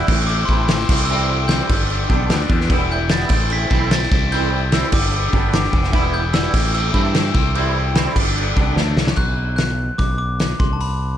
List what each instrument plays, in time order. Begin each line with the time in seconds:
Already playing: glockenspiel E6
0.07 fingered electric bass A1, overdriven electric guitar A2 E3 A3 C4 E4, string machine E4 C5 A5 C6, kick, crash
0.27 overdriven electric guitar E3 A3 C4, glockenspiel D6, crash
0.31 overdriven electric guitar E4
0.45 fingered electric bass A1, overdriven electric guitar A3 C4 E4, glockenspiel C6, kick
0.51 overdriven electric guitar A2 E3
0.68 overdriven electric guitar E3 A3 C4, snare, crash
0.73 overdriven electric guitar E4
0.80 snare
0.89 fingered electric bass C2, overdriven electric guitar C3 G3 C4 E4, string machine A4 G5, kick, crash
1.05 overdriven electric guitar C3 E3, glockenspiel E6
1.10 overdriven electric guitar G3 C4 E4 G4, crash
1.29 overdriven electric guitar G3 C4 E4
1.48 overdriven electric guitar C3 E3 G3 C4 G4, glockenspiel G6, snare, crash
1.53 overdriven electric guitar E4
1.69 fingered electric bass G1, overdriven electric guitar D3 G3 B3 D4, string machine D4 B4 B5, kick, crash
1.74 overdriven electric guitar G2
1.90 overdriven electric guitar D3 G3 B3 D4, crash
2.09 fingered electric bass B1, overdriven electric guitar D3 G3 B3 D4 G4, kick
2.13 overdriven electric guitar G2
2.30 fingered electric bass D2, overdriven electric guitar D3 G3 B3 D4, snare, crash
2.40 snare
2.50 fingered electric bass E2, overdriven electric guitar G3 B3 D4, kick
2.61 snare
2.68 fingered electric bass E1, overdriven electric guitar E3 G3 B3, string machine E4 G5 B5, kick, crash
2.72 overdriven electric guitar E4
2.90 overdriven electric guitar G3 B3 E4, glockenspiel G6
3.09 overdriven electric guitar E3 G3 B3 E4, glockenspiel A6, snare, crash
3.29 fingered electric bass A1, overdriven electric guitar A2 E3 A3 C4 E4, string machine E4 C5 A5 C6, kick, crash
3.49 overdriven electric guitar E3 A3 C4 E4, glockenspiel B6, crash
3.70 fingered electric bass B1, overdriven electric guitar A2 E3 A3 C4 E4, kick
3.90 overdriven electric guitar E3 A3 C4 E4, glockenspiel A6, snare, crash
4.03 snare
4.11 fingered electric bass C2, overdriven electric guitar C3 G3 C4 E4, string machine E4 A4 G5, kick
4.30 overdriven electric guitar C3 E3 G3 C4 E4, glockenspiel G6, crash
4.52 overdriven electric guitar G3 C4 E4
4.72 overdriven electric guitar C3 E3 G3 C4 E4, glockenspiel E6, snare, crash
4.92 fingered electric bass G1, overdriven electric guitar G2 D3 G3 B3 D4, string machine D4 B4 G5 B5, glockenspiel D6, kick, crash
5.13 overdriven electric guitar D3 G3 B3 D4, crash
5.33 fingered electric bass G1, overdriven electric guitar G2 D3 G3 B3 D4 G4, kick
5.52 overdriven electric guitar D3 G3 B3, glockenspiel D6, snare, crash
5.56 overdriven electric guitar D4
5.64 snare
5.72 fingered electric bass F1, overdriven electric guitar G3 B3 D4, kick
5.83 snare
5.92 fingered electric bass E1, overdriven electric guitar E3 G3 B3 E4, string machine E4, kick, crash
6.12 overdriven electric guitar G3 B3 E4, glockenspiel G6
6.33 overdriven electric guitar E3 G3 B3 E4, glockenspiel E6, snare, crash
6.53 fingered electric bass A1, overdriven electric guitar E3 A3 C4 E4, string machine C5 A5 C6, kick, crash
6.58 overdriven electric guitar A2
6.74 overdriven electric guitar E3 A3 C4 E4, glockenspiel E6, crash
6.94 fingered electric bass G2, overdriven electric guitar A2 E3 A3 C4 E4, kick
7.14 overdriven electric guitar E3 A3 C4 E4, snare, crash
7.34 fingered electric bass C2, overdriven electric guitar C3 G3 C4 E4, string machine A4 G5, kick
7.54 overdriven electric guitar C3 E3 G3 C4 E4, crash
7.75 overdriven electric guitar G3 C4 E4
7.94 overdriven electric guitar C3 E3 G3 C4, snare, crash
7.99 overdriven electric guitar E4
8.15 fingered electric bass G1, overdriven electric guitar G2 D3 G3 B3 D4, string machine D4 B4 B5, kick, crash
8.35 overdriven electric guitar D3 G3 B3 D4, crash
8.56 fingered electric bass C2, overdriven electric guitar G2 D3 G3 B3 D4 G4, kick
8.75 fingered electric bass D2, overdriven electric guitar D3 F#3 A3 D4, string machine A4 F#5 A5, snare
8.96 fingered electric bass C2, overdriven electric guitar F#3 A3 D4, snare
9.07 snare
9.16 fingered electric bass B1, glockenspiel F#6, kick, crash
9.56 glockenspiel F#6, snare, open hi-hat
9.98 fingered electric bass B1, glockenspiel D6, kick, open hi-hat
10.18 glockenspiel D6
10.40 snare, open hi-hat
10.60 fingered electric bass C2, glockenspiel C6, kick
10.73 glockenspiel A5
10.81 glockenspiel B5, open hi-hat